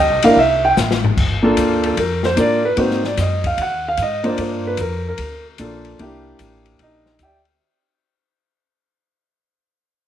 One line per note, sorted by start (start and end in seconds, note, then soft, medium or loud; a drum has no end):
0.00 0.23 D#5 medium
0.10 0.23 C2 soft
0.22 0.36 A1 medium
0.22 0.36 A#3 medium
0.22 0.36 D4 medium
0.22 0.36 E4 medium
0.22 0.36 A#4 medium
0.22 0.37 F5 medium
0.22 ride medium
0.36 0.75 C2 medium
0.36 0.63 E5 medium
0.36 kick soft
0.65 0.72 G5 medium
0.77 1.16 A1 medium
0.77 snare soft
0.77 hi-hat pedal medium
0.91 snare medium
1.04 floor tom medium
1.17 1.56 G1 medium
1.17 kick medium
1.17 crash medium
1.43 1.94 A#3 medium
1.43 1.94 D4 medium
1.43 1.94 F4 medium
1.43 1.84 A4 medium
1.57 1.96 D2 medium
1.57 kick soft
1.57 hi-hat pedal soft
1.57 ride medium
1.84 1.98 A4 medium
1.84 ride soft
1.97 2.36 F2 medium
1.97 2.24 A#4 medium
1.97 kick soft
1.97 ride medium
2.23 2.38 C5 medium
2.23 snare soft
2.36 2.76 A2 medium
2.36 2.60 A#3 medium
2.36 2.61 D4 soft
2.36 2.61 F4 soft
2.36 2.62 A#4 medium
2.36 2.64 D5 medium
2.36 kick soft
2.36 hi-hat pedal medium
2.36 ride medium
2.65 2.78 B4 medium
2.77 3.16 G#2 medium
2.77 3.01 A#3 soft
2.77 3.01 C4 soft
2.77 3.01 D#4 soft
2.77 3.01 F#4 medium
2.77 3.04 C5 medium
2.77 kick soft
2.77 ride medium
2.91 snare soft
3.04 3.18 D5 medium
3.04 snare soft
3.17 3.56 F#2 medium
3.17 3.45 D#5 medium
3.17 kick soft
3.17 snare soft
3.17 hi-hat pedal medium
3.17 ride medium
3.44 3.59 F5 medium
3.44 kick medium
3.44 ride soft
3.57 3.97 D#2 medium
3.57 kick soft
3.57 ride medium
3.62 3.85 F#5 medium
3.88 4.00 F5 medium
3.97 4.37 G#2 medium
3.97 kick soft
3.97 hi-hat pedal soft
3.97 ride medium
4.02 4.26 D#5 medium
4.24 4.75 A#3 medium
4.24 4.76 D4 medium
4.24 4.76 F4 medium
4.24 4.40 C5 medium
4.24 ride soft
4.29 4.40 D5 medium
4.38 4.77 G2 medium
4.38 4.65 C5 medium
4.38 kick soft
4.38 ride medium
4.67 4.79 B4 medium
4.77 5.17 F2 medium
4.77 5.05 A#4 medium
4.77 kick soft
4.77 hi-hat pedal soft
4.77 ride medium
5.09 5.44 A#4 medium
5.18 5.57 D2 medium
5.18 kick soft
5.18 ride medium
5.58 5.98 A#1 medium
5.58 5.98 A#3 soft
5.58 5.98 D4 soft
5.58 6.00 F4 soft
5.58 6.00 A4 medium
5.58 kick soft
5.58 hi-hat pedal soft
5.58 ride medium
5.85 ride soft
5.99 6.38 C2 medium
5.99 7.12 A#3 medium
5.99 7.12 D4 medium
5.99 7.13 E4 medium
5.99 7.13 G4 medium
5.99 kick soft
5.99 ride soft
6.39 6.78 A1 medium
6.39 kick soft
6.39 hi-hat pedal medium
6.39 ride medium
6.66 ride soft
6.79 7.19 A#1 medium
6.79 7.19 D#5 medium
6.79 kick soft
6.79 ride medium
6.83 7.19 D#4 medium
7.06 snare soft
7.19 7.59 D2 medium
7.19 7.38 E5 medium
7.19 7.38 G5 medium
7.19 kick soft
7.19 hi-hat pedal medium
7.19 ride medium
7.23 7.38 G4 medium
7.23 7.38 D5 medium
7.45 ride soft